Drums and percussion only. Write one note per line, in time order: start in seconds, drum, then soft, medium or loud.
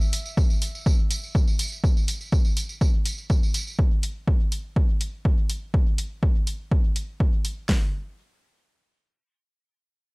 0.01 tambourine soft
0.13 open hi-hat medium
0.13 tambourine medium
0.26 tambourine soft
0.37 kick loud
0.37 tambourine soft
0.50 tambourine soft
0.62 open hi-hat medium
0.62 tambourine medium
0.75 tambourine soft
0.86 kick loud
0.86 tambourine medium
1.11 open hi-hat medium
1.11 tambourine loud
1.24 tambourine soft
1.35 kick medium
1.35 tambourine soft
1.48 tambourine soft
1.59 open hi-hat medium
1.59 tambourine medium
1.72 tambourine soft
1.84 kick loud
1.84 tambourine soft
1.97 tambourine soft
2.08 open hi-hat medium
2.08 tambourine medium
2.21 tambourine soft
2.32 kick loud
2.32 tambourine soft
2.45 tambourine soft
2.57 open hi-hat medium
2.57 tambourine medium
2.69 tambourine soft
2.81 kick loud
2.81 tambourine medium
3.06 open hi-hat medium
3.06 tambourine medium
3.18 tambourine soft
3.30 kick medium
3.30 tambourine soft
3.43 tambourine soft
3.54 open hi-hat medium
3.54 tambourine medium
3.67 tambourine soft
3.79 kick loud
4.03 open hi-hat medium
4.28 kick medium
4.52 open hi-hat medium
4.76 kick loud
5.01 open hi-hat medium
5.25 kick medium
5.50 open hi-hat medium
5.74 kick loud
5.98 open hi-hat medium
6.23 kick medium
6.47 open hi-hat medium
6.71 kick loud
6.96 open hi-hat medium
7.20 kick medium
7.45 open hi-hat medium
7.69 kick medium
7.69 snare medium
7.69 open hi-hat medium